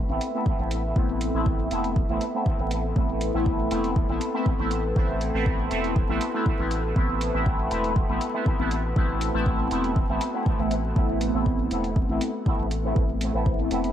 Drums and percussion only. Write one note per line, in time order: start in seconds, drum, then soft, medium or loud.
0.21 closed hi-hat medium
0.46 kick loud
0.71 closed hi-hat medium
0.96 kick loud
1.21 closed hi-hat medium
1.46 kick loud
1.71 closed hi-hat medium
1.84 closed hi-hat soft
1.96 kick loud
2.21 closed hi-hat medium
2.46 kick loud
2.71 closed hi-hat medium
2.96 kick loud
3.21 closed hi-hat medium
3.46 kick loud
3.71 closed hi-hat medium
3.84 closed hi-hat soft
3.96 kick loud
4.21 closed hi-hat medium
4.46 kick loud
4.71 closed hi-hat medium
4.96 kick loud
5.21 closed hi-hat medium
5.46 kick loud
5.71 closed hi-hat medium
5.84 closed hi-hat soft
5.96 kick loud
6.21 closed hi-hat medium
6.46 kick loud
6.71 closed hi-hat medium
6.96 kick loud
7.21 closed hi-hat medium
7.46 kick loud
7.71 closed hi-hat medium
7.84 closed hi-hat soft
7.96 kick loud
8.21 closed hi-hat medium
8.46 kick loud
8.71 closed hi-hat medium
8.96 kick loud
9.21 closed hi-hat medium
9.46 kick loud
9.71 closed hi-hat medium
9.84 closed hi-hat soft
9.96 kick loud
10.21 closed hi-hat medium
10.46 kick loud
10.71 closed hi-hat medium
10.96 kick loud
11.21 closed hi-hat medium
11.46 kick loud
11.71 closed hi-hat medium
11.84 closed hi-hat soft
11.96 kick loud
12.21 closed hi-hat medium
12.46 kick loud
12.71 closed hi-hat medium
12.96 kick loud
13.21 closed hi-hat medium
13.46 kick loud
13.71 closed hi-hat medium
13.84 closed hi-hat soft